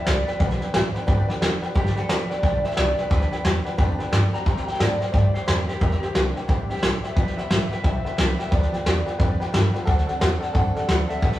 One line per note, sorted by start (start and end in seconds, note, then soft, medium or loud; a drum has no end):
0.05 0.27 C2 medium
0.05 0.27 F3 medium
0.05 0.28 B3 medium
0.05 0.27 D4 medium
0.05 0.27 G4 medium
0.05 0.19 B4 medium
0.05 0.19 D5 medium
0.05 0.27 D5 medium
0.05 0.19 G5 medium
0.05 snare loud
0.05 hi-hat pedal loud
0.27 0.39 F3 soft
0.27 0.39 B3 soft
0.27 0.39 D4 medium
0.27 0.40 G4 medium
0.27 0.35 B4 medium
0.27 0.38 B4 medium
0.27 0.35 D5 medium
0.27 0.35 G5 medium
0.27 muted upright bass stroke medium
0.27 snare soft
0.39 0.61 B1 medium
0.39 0.61 G2 medium
0.39 0.61 D3 medium
0.39 0.62 F3 medium
0.39 0.61 B3 medium
0.39 0.61 D4 medium
0.39 0.60 G4 medium
0.39 1.38 B4 medium
0.39 0.53 B4 medium
0.39 0.53 D5 medium
0.39 0.53 G5 loud
0.39 kick loud
0.39 snare soft
0.51 snare soft
0.61 0.72 F3 soft
0.61 0.73 B3 soft
0.61 0.74 D4 medium
0.61 0.74 G4 medium
0.61 0.69 B4 medium
0.61 0.69 D5 medium
0.61 0.69 G5 medium
0.61 muted upright bass stroke medium
0.61 snare soft
0.73 0.94 A1 medium
0.73 0.93 G4 medium
0.73 0.86 B4 medium
0.73 0.87 D5 medium
0.73 0.87 G5 medium
0.73 snare loud
0.73 hi-hat pedal medium
0.94 1.06 F3 soft
0.94 1.07 B3 medium
0.94 1.07 D4 medium
0.94 1.07 G4 medium
0.94 1.03 B4 medium
0.94 1.03 D5 medium
0.94 1.03 G5 loud
0.94 muted upright bass stroke medium
0.94 snare soft
1.07 1.29 G1 medium
1.07 1.29 G2 medium
1.07 1.29 D3 medium
1.07 1.29 F3 loud
1.07 1.29 B3 medium
1.07 1.29 D4 loud
1.07 1.28 G4 medium
1.07 1.20 B4 loud
1.07 1.21 D5 loud
1.07 1.21 G5 loud
1.07 kick loud
1.07 snare soft
1.29 1.40 F3 soft
1.29 1.41 B3 medium
1.29 1.41 D4 medium
1.29 1.42 G4 medium
1.29 1.36 B4 medium
1.29 1.37 D5 medium
1.29 1.37 G5 loud
1.29 muted upright bass stroke medium
1.29 snare soft
1.41 1.62 F1 medium
1.41 1.63 F3 medium
1.41 1.63 B3 medium
1.41 1.62 D4 medium
1.41 1.61 G4 medium
1.41 1.54 B4 medium
1.41 1.55 D5 medium
1.41 1.55 G5 loud
1.41 snare loud
1.41 hi-hat pedal loud
1.62 1.74 F3 medium
1.62 1.74 B3 medium
1.62 1.75 D4 medium
1.62 1.75 G4 medium
1.62 1.70 B4 medium
1.62 1.71 D5 medium
1.62 1.71 G5 loud
1.62 muted upright bass stroke soft
1.62 snare soft
1.74 1.96 G1 medium
1.74 1.96 G2 medium
1.74 1.97 D3 medium
1.74 1.97 F3 medium
1.74 1.97 B3 medium
1.74 1.96 D4 medium
1.74 1.97 G4 loud
1.74 1.95 G4 medium
1.74 1.88 B4 medium
1.74 1.88 D5 medium
1.74 1.89 G5 loud
1.74 kick loud
1.74 snare soft
1.86 snare soft
1.96 2.07 F3 soft
1.96 2.08 B3 soft
1.96 2.09 D4 medium
1.96 2.09 G4 medium
1.96 2.10 A4 medium
1.96 2.04 B4 medium
1.96 2.04 D5 medium
1.96 2.05 G5 medium
1.96 muted upright bass stroke medium
1.96 snare soft
2.08 2.29 A1 medium
2.08 2.30 F3 medium
2.08 2.31 B3 medium
2.08 2.30 D4 medium
2.08 2.29 G4 medium
2.08 2.22 B4 medium
2.08 2.30 B4 medium
2.08 2.22 D5 medium
2.08 2.23 G5 medium
2.08 snare loud
2.08 hi-hat pedal medium
2.30 2.43 F3 soft
2.30 2.43 B3 soft
2.30 2.43 D4 soft
2.30 2.43 G4 medium
2.30 2.38 B4 medium
2.30 2.63 D5 loud
2.30 2.38 D5 medium
2.30 2.39 G5 medium
2.30 muted upright bass stroke soft
2.30 snare soft
2.43 2.64 B1 medium
2.43 2.64 G2 medium
2.43 2.65 D3 medium
2.43 2.65 F3 medium
2.43 2.65 B3 medium
2.43 2.64 D4 medium
2.43 2.63 G4 medium
2.43 2.56 B4 loud
2.43 2.56 D5 medium
2.43 2.57 G5 loud
2.43 kick loud
2.43 snare soft
2.64 2.75 F3 soft
2.64 2.76 B3 soft
2.64 2.77 D4 medium
2.64 2.77 G4 medium
2.64 2.72 B4 medium
2.64 2.72 D5 medium
2.64 2.77 E5 medium
2.64 2.73 G5 medium
2.64 muted upright bass stroke medium
2.64 snare soft
2.71 snare soft
2.76 2.98 C2 loud
2.76 2.98 F3 medium
2.76 2.98 B3 medium
2.76 2.97 D4 medium
2.76 2.96 G4 medium
2.76 2.90 B4 medium
2.76 2.98 D5 loud
2.76 2.90 D5 medium
2.76 2.91 G5 medium
2.76 snare loud
2.76 hi-hat pedal loud
2.97 3.09 F3 soft
2.97 3.10 B3 soft
2.97 3.10 D4 medium
2.97 3.10 G4 medium
2.97 3.06 B4 medium
2.97 3.10 B4 medium
2.97 3.06 D5 medium
2.97 3.06 G5 medium
2.97 muted upright bass stroke medium
2.97 snare soft
3.10 3.32 D2 medium
3.10 3.32 G2 medium
3.10 3.32 D3 medium
3.10 3.32 F3 medium
3.10 3.31 B3 medium
3.10 3.31 D4 medium
3.10 3.30 G4 medium
3.10 3.23 B4 medium
3.10 4.09 B4 medium
3.10 3.24 D5 medium
3.10 3.24 G5 loud
3.10 kick loud
3.10 snare soft
3.22 snare soft
3.31 3.42 F3 soft
3.31 3.43 B3 soft
3.31 3.44 D4 soft
3.31 3.44 G4 medium
3.31 3.39 B4 medium
3.31 3.40 D5 medium
3.31 3.40 G5 medium
3.31 snare soft
3.44 3.65 E2 medium
3.44 3.66 F3 medium
3.44 3.65 B3 medium
3.44 3.65 D4 medium
3.44 3.64 G4 medium
3.44 3.57 B4 medium
3.44 3.57 D5 medium
3.44 3.58 G5 medium
3.44 snare loud
3.44 hi-hat pedal medium
3.65 3.77 F3 soft
3.65 3.77 B3 soft
3.65 3.77 D4 medium
3.65 3.78 G4 medium
3.65 3.73 B4 medium
3.65 3.73 D5 medium
3.65 3.74 G5 loud
3.65 muted upright bass stroke medium
3.65 snare soft
3.77 3.98 F2 medium
3.77 3.99 G2 medium
3.77 4.00 D3 medium
3.77 4.00 F3 medium
3.77 3.99 B3 medium
3.77 3.98 D4 loud
3.77 3.98 G4 medium
3.77 3.91 B4 loud
3.77 3.91 D5 medium
3.77 3.92 G5 loud
3.77 kick loud
3.77 snare soft
3.99 4.10 F3 soft
3.99 4.11 B3 medium
3.99 4.12 D4 medium
3.99 4.12 G4 medium
3.99 4.07 B4 medium
3.99 4.07 D5 medium
3.99 4.08 G5 loud
3.99 muted upright bass stroke medium
3.99 snare soft
4.11 4.33 G2 loud
4.11 4.33 F3 medium
4.11 4.33 B3 medium
4.11 4.32 D4 medium
4.11 4.32 G4 medium
4.11 4.25 B4 medium
4.11 4.25 D5 medium
4.11 4.26 G5 medium
4.11 snare loud
4.11 hi-hat pedal loud
4.33 4.46 F3 soft
4.33 4.46 B3 medium
4.33 4.46 D4 soft
4.33 4.46 G4 medium
4.33 4.41 B4 medium
4.33 4.41 D5 medium
4.33 4.42 G5 medium
4.33 4.67 A#5 loud
4.33 muted upright bass stroke medium
4.33 snare soft
4.45 4.67 C3 medium
4.45 4.68 G3 medium
4.45 4.68 A#3 medium
4.45 4.67 E4 medium
4.45 4.66 G4 medium
4.45 4.58 C5 medium
4.45 4.59 E5 medium
4.45 4.59 G5 loud
4.45 kick loud
4.45 snare soft
4.57 snare soft
4.67 4.79 A#3 soft
4.67 4.79 E4 medium
4.67 4.80 G4 soft
4.67 4.75 C5 medium
4.67 4.75 E5 medium
4.67 4.79 G5 medium
4.67 4.75 G5 medium
4.67 muted upright bass stroke medium
4.67 snare soft
4.74 snare soft
4.79 5.01 A2 medium
4.79 5.01 G3 medium
4.79 4.99 G4 medium
4.79 4.92 C5 medium
4.79 5.01 D5 medium
4.79 4.93 E5 medium
4.79 4.93 G5 medium
4.79 snare loud
4.79 hi-hat pedal medium
5.00 5.12 A#3 soft
5.00 5.13 E4 soft
5.00 5.13 G4 soft
5.00 5.08 C5 medium
5.00 5.13 C5 medium
5.00 5.08 E5 medium
5.00 5.09 G5 medium
5.00 muted upright bass stroke medium
5.00 snare soft
5.12 5.35 G2 medium
5.12 5.34 C3 medium
5.12 5.35 G3 medium
5.12 5.35 A#3 medium
5.12 5.34 E4 medium
5.12 5.33 G4 medium
5.12 5.26 C5 medium
5.12 5.34 D5 medium
5.12 5.26 E5 medium
5.12 5.27 G5 loud
5.12 kick loud
5.12 snare soft
5.34 5.46 A#3 soft
5.34 5.47 E4 medium
5.34 5.47 G4 soft
5.34 5.42 C5 medium
5.34 5.47 C5 medium
5.34 5.42 E5 medium
5.34 5.43 G5 medium
5.34 muted upright bass stroke medium
5.34 snare soft
5.46 5.68 F2 medium
5.46 5.68 G3 medium
5.46 5.69 A#3 medium
5.46 5.68 E4 medium
5.46 5.67 G4 medium
5.46 5.68 A#4 medium
5.46 5.60 C5 medium
5.46 5.60 E5 medium
5.46 5.61 G5 medium
5.46 snare loud
5.46 hi-hat pedal medium
5.67 5.80 A#3 soft
5.67 5.80 E4 medium
5.67 5.80 G4 medium
5.67 5.81 G4 medium
5.67 5.76 C5 medium
5.67 5.76 E5 medium
5.67 5.76 G5 medium
5.67 muted upright bass stroke medium
5.67 snare soft
5.80 6.02 E2 medium
5.80 6.02 C3 medium
5.80 6.03 G3 medium
5.80 6.03 A#3 medium
5.80 6.02 E4 medium
5.80 6.01 G4 medium
5.80 6.02 A#4 medium
5.80 5.94 C5 medium
5.80 5.94 E5 medium
5.80 5.94 G5 loud
5.80 kick loud
5.80 snare soft
5.92 snare soft
6.02 6.15 A#3 soft
6.02 6.15 E4 soft
6.02 6.14 G4 loud
6.02 6.15 G4 soft
6.02 6.10 C5 medium
6.02 6.10 E5 medium
6.02 6.11 G5 medium
6.02 muted upright bass stroke medium
6.02 snare soft
6.14 6.36 C2 medium
6.14 6.37 A#3 medium
6.14 6.35 D4 loud
6.14 6.36 E4 medium
6.14 6.35 G4 medium
6.14 6.28 C5 medium
6.14 6.28 E5 medium
6.14 6.28 G5 medium
6.14 snare loud
6.14 hi-hat pedal medium
6.35 6.47 A#3 soft
6.35 6.48 E4 soft
6.35 6.48 G4 medium
6.35 6.43 C5 medium
6.35 6.44 E5 medium
6.35 6.44 G5 medium
6.35 snare soft
6.48 6.69 A1 medium
6.48 6.70 C3 medium
6.48 6.70 G3 medium
6.48 6.70 A#3 medium
6.48 6.69 D4 medium
6.48 6.69 E4 medium
6.48 6.68 G4 medium
6.48 6.61 C5 loud
6.48 6.62 E5 medium
6.48 6.62 G5 loud
6.48 kick loud
6.48 snare soft
6.69 6.82 A#3 soft
6.69 6.83 E4 soft
6.69 6.82 G4 medium
6.69 6.82 G4 loud
6.69 6.77 C5 medium
6.69 6.78 E5 medium
6.69 6.78 G5 medium
6.69 muted upright bass stroke medium
6.69 snare soft
6.77 snare soft
6.82 7.03 A#1 loud
6.82 7.04 G3 medium
6.82 7.04 A#3 medium
6.82 7.02 G4 medium
6.82 6.95 C5 medium
6.82 6.95 E5 medium
6.82 6.96 G5 medium
6.82 snare loud
6.82 hi-hat pedal loud
7.03 7.17 A#3 soft
7.03 7.17 E4 soft
7.03 7.16 G4 medium
7.03 7.11 C5 medium
7.03 7.12 E5 medium
7.03 7.16 E5 loud
7.03 7.12 G5 medium
7.03 snare soft
7.16 7.37 G1 medium
7.16 7.38 G2 medium
7.16 7.38 D3 medium
7.16 7.38 F3 medium
7.16 7.38 B3 medium
7.16 7.37 F4 medium
7.16 7.37 G4 medium
7.16 7.29 B4 medium
7.16 7.37 B4 loud
7.16 7.29 D5 medium
7.16 7.30 G5 loud
7.16 kick loud
7.16 snare soft
7.27 snare soft
7.37 7.49 F3 soft
7.37 7.50 B3 soft
7.37 7.50 F4 medium
7.37 7.50 G4 medium
7.37 7.45 B4 medium
7.37 7.46 D5 medium
7.37 7.49 E5 loud
7.37 7.46 G5 medium
7.37 muted upright bass stroke soft
7.37 snare soft
7.50 7.71 A1 medium
7.50 7.72 F3 medium
7.50 7.72 B3 medium
7.50 7.70 G4 medium
7.50 7.63 B4 medium
7.50 7.63 D5 medium
7.50 7.71 E5 loud
7.50 7.64 G5 medium
7.50 snare loud
7.50 hi-hat pedal medium
7.71 7.83 F3 soft
7.71 7.84 B3 soft
7.71 7.84 F4 soft
7.71 7.84 G4 soft
7.71 7.83 B4 medium
7.71 7.79 B4 medium
7.71 7.79 D5 medium
7.71 7.80 G5 medium
7.71 muted upright bass stroke medium
7.71 snare soft
7.84 8.05 B1 medium
7.84 8.06 G2 medium
7.84 8.06 D3 medium
7.84 8.06 F3 medium
7.84 8.05 B3 medium
7.84 8.05 F4 medium
7.84 8.04 G4 medium
7.84 7.97 B4 medium
7.84 7.97 D5 medium
7.84 8.04 E5 medium
7.84 7.98 G5 loud
7.84 kick loud
7.84 snare soft
8.05 8.16 F3 soft
8.05 8.17 B3 soft
8.05 8.17 F4 medium
8.05 8.18 G4 medium
8.05 8.13 B4 medium
8.05 8.13 D5 medium
8.05 8.17 E5 loud
8.05 8.13 G5 medium
8.05 muted upright bass stroke medium
8.05 snare soft
8.17 8.39 C2 loud
8.17 8.39 F3 medium
8.17 8.39 B3 medium
8.17 8.37 G4 medium
8.17 8.38 B4 medium
8.17 8.30 B4 medium
8.17 8.31 D5 medium
8.17 8.31 G5 medium
8.17 snare loud
8.17 hi-hat pedal medium
8.39 8.51 F3 soft
8.39 8.51 B3 soft
8.39 8.51 F4 soft
8.39 8.51 G4 medium
8.39 8.46 B4 medium
8.39 8.47 D5 medium
8.39 8.52 E5 medium
8.39 8.47 G5 medium
8.39 snare soft
8.51 8.73 D2 medium
8.51 8.73 G2 medium
8.51 8.73 D3 medium
8.51 8.73 F3 medium
8.51 8.73 B3 medium
8.51 8.72 F4 medium
8.51 8.71 G4 medium
8.51 8.64 B4 loud
8.51 8.65 D5 medium
8.51 9.18 D5 loud
8.51 8.65 G5 loud
8.51 kick loud
8.51 snare soft
8.63 snare soft
8.73 8.84 F3 soft
8.73 8.85 B3 soft
8.73 8.86 F4 medium
8.73 8.85 G4 medium
8.73 8.80 B4 medium
8.73 8.81 D5 medium
8.73 8.81 G5 medium
8.73 muted upright bass stroke medium
8.73 snare soft
8.85 9.06 E2 medium
8.85 9.07 F3 medium
8.85 9.06 F4 medium
8.85 9.05 G4 medium
8.85 8.98 B4 medium
8.85 8.98 D5 medium
8.85 8.99 G5 medium
8.85 snare loud
8.85 hi-hat pedal medium
9.06 9.19 F3 soft
9.06 9.19 B3 soft
9.06 9.20 F4 medium
9.06 9.19 G4 medium
9.06 9.14 B4 medium
9.06 9.14 D5 medium
9.06 9.15 G5 loud
9.06 snare soft
9.19 9.40 F2 medium
9.19 9.41 G2 medium
9.19 9.41 D3 medium
9.19 9.41 F3 medium
9.19 9.41 B3 medium
9.19 9.40 F4 medium
9.19 9.39 G4 loud
9.19 9.32 B4 loud
9.19 9.32 D5 loud
9.19 9.33 G5 loud
9.19 kick loud
9.19 snare soft
9.40 9.52 F3 soft
9.40 9.52 B3 medium
9.40 9.53 F4 medium
9.40 9.53 G4 medium
9.40 9.48 B4 loud
9.40 9.48 D5 medium
9.40 9.49 G5 loud
9.40 muted upright bass stroke medium
9.40 snare soft
9.52 9.74 G2 loud
9.52 9.74 F4 medium
9.52 9.74 G4 medium
9.52 9.66 B4 medium
9.52 9.66 D5 medium
9.52 9.67 G5 loud
9.52 snare loud
9.52 hi-hat pedal medium
9.74 9.87 F3 soft
9.74 9.87 B3 soft
9.74 9.87 F4 medium
9.74 9.87 G4 medium
9.74 9.82 B4 medium
9.74 9.82 D5 medium
9.74 9.82 G5 medium
9.74 muted upright bass stroke medium
9.74 snare soft
9.85 10.08 D2 medium
9.85 10.08 D3 medium
9.85 10.08 F#3 medium
9.85 10.08 C4 medium
9.85 10.07 D4 medium
9.85 9.99 A4 loud
9.85 10.06 A4 medium
9.85 10.00 D5 loud
9.85 10.00 F#5 loud
9.85 kick loud
9.85 snare soft
9.99 snare soft
10.07 10.20 C4 medium
10.07 10.20 D4 medium
10.07 10.15 A4 medium
10.07 10.20 A4 medium
10.07 10.16 D5 medium
10.07 10.16 F#5 medium
10.07 snare soft
10.19 10.42 E2 loud
10.19 10.42 F#3 medium
10.19 10.42 C4 medium
10.19 10.41 D4 medium
10.19 10.33 A4 medium
10.19 10.40 A4 medium
10.19 10.33 D5 medium
10.19 10.34 F#5 medium
10.19 snare loud
10.19 hi-hat pedal medium
10.40 10.54 C4 soft
10.40 10.54 D4 soft
10.40 10.49 A4 loud
10.40 10.54 A4 medium
10.40 10.49 D5 medium
10.40 10.50 F#5 loud
10.40 muted upright bass stroke medium
10.40 snare soft
10.53 10.76 F#2 medium
10.53 10.76 D3 medium
10.53 10.76 F#3 medium
10.53 10.76 C4 medium
10.53 10.75 D4 loud
10.53 10.67 A4 loud
10.53 10.75 A4 medium
10.53 10.67 D5 loud
10.53 10.68 F#5 loud
10.53 kick loud
10.53 snare soft
10.75 10.87 C4 medium
10.75 10.88 D4 medium
10.75 10.83 A4 medium
10.75 10.88 A4 medium
10.75 10.83 D5 medium
10.75 10.84 F#5 loud
10.75 muted upright bass stroke medium
10.75 snare soft
10.87 11.09 D2 medium
10.87 11.09 F#3 medium
10.87 11.10 C4 medium
10.87 11.09 D4 medium
10.87 11.01 A4 medium
10.87 11.08 A4 medium
10.87 11.01 D5 medium
10.87 11.02 F#5 medium
10.87 snare loud
10.87 hi-hat pedal medium
11.09 11.21 C4 soft
11.09 11.21 D4 soft
11.09 11.17 A4 medium
11.09 11.22 A4 medium
11.09 11.17 D5 medium
11.09 11.22 E5 loud
11.09 11.17 F#5 medium
11.09 snare soft
11.21 11.39 A1 medium
11.21 11.39 D3 medium
11.21 11.39 F#3 medium
11.21 11.39 C4 medium
11.21 11.39 D4 medium
11.21 11.34 A4 medium
11.21 11.39 A4 loud
11.21 11.39 B4 medium
11.21 11.35 D5 medium
11.21 11.35 F#5 loud
11.21 kick loud
11.21 snare soft
11.33 snare soft